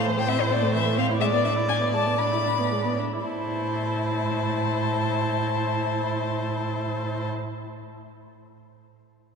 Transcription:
Already playing: A2 C5
0.07 E3
0.18 A3 G5
0.29 C4 E5
0.40 E4 C5
0.51 C4 D5
0.62 A3
0.74 E3 E5
0.85 A3
0.98 C4 F5
1.09 E4
1.21 G#3 D5 E5
1.33 B3 D5
1.45 D4 E5
1.56 E4
1.68 D4 G#5
1.80 B3
1.93 G#3 A5
2.06 B3
2.18 D4 B5
2.32 E4
2.45 D4
2.59 B3
2.72 G#3
2.85 B3
2.99 D4
3.13 E4
3.26 A2 E4 C5 A5

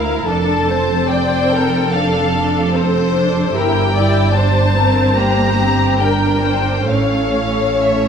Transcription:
Already playing: D2 E4 A#4 F5
0.27 F1 F2 D4 A4 A5
0.68 C4 C5
1.09 C5 D5 G5
1.51 A4 A#4
1.92 D4 A4 F5
2.34 D4
2.73 C4 C5
3.14 D4
3.53 G1 G2 E4 G4 A#4 G5
3.93 E4 D5
4.34 D4 C5 A5
4.76 C4 A#4
5.16 A#3 G4 A#5
5.60 C4
6.00 D4 A#4 G5
6.44 C5
6.89 A1 A2 C#4 A4 C#5 F5
7.85 E5

